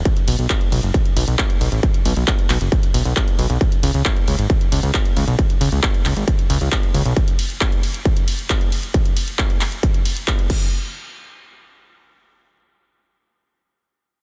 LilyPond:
<<
  \new Staff \with { instrumentName = "Analog synth bass" } { \clef bass \time 4/4 \key cis \phrygian \tempo 4 = 135 r8 b,,16 b,,16 r8 b,,16 fis,,16 r8 b,,16 b,,16 r8 b,,16 a,,16 | r8 b,,16 b,,16 r8 b,,16 fis,,16 r8 b,,16 b,,16 r8 b,,16 b,,16 | r8 cis,16 cis,16 r8 cis,16 gis,,16 r8 cis,16 cis,16 r8 cis,16 b,,16 | r8 cis,16 cis,16 r8 cis,16 gis,,16 r8 cis,16 cis,16 r8 cis,16 b,,16 |
r1 | r1 | r1 | r1 | }
  \new DrumStaff \with { instrumentName = "Drums" } \drummode { \time 4/4 <hh bd>16 hh16 <hho cymr>16 hh16 <hc hh bd>16 hh16 <hho cymr>16 hh16 <hh bd>16 hh16 <hho cymr>16 hh16 <hc hh bd>16 hh16 <hho cymr>16 hh16 | <hh bd>16 hh16 <hho cymr>16 hh16 <hc hh bd>16 hh16 <hc hho cymr>16 hh16 <hh bd>16 hh16 <hho cymr>16 hh16 <hc hh bd>16 hh16 <hho cymr>16 hh16 | <hh bd>16 hh16 <hho cymr>16 hh16 <hc hh bd>16 hh16 <hho cymr>16 hh16 <hh bd>16 hh16 <hho cymr>16 hh16 <hc hh bd>16 hh16 <hho cymr>16 hh16 | <hh bd>16 hh16 <hho cymr>16 hh16 <hc hh bd>16 hh16 <hc hho cymr>16 hh16 <hh bd>16 hh16 <hho cymr>16 hh16 <hc hh bd>16 hh16 <hho cymr>16 hh16 |
<hh bd>16 hh16 <hho cymr>16 hh16 <hc hh bd>16 hh16 <hho cymr>16 hh16 <hh bd>16 hh16 <hho cymr>16 hh16 <hc hh bd>16 hh16 <hho cymr>16 hh16 | <hh bd>16 hh16 <hho cymr>16 hh16 <hc hh bd>16 hh16 <hc hho cymr>16 hh16 <hh bd>16 hh16 <hho cymr>16 hh16 <hc hh bd>16 hh16 <cymc bd>8 | r4 r4 r4 r4 | r4 r4 r4 r4 | }
>>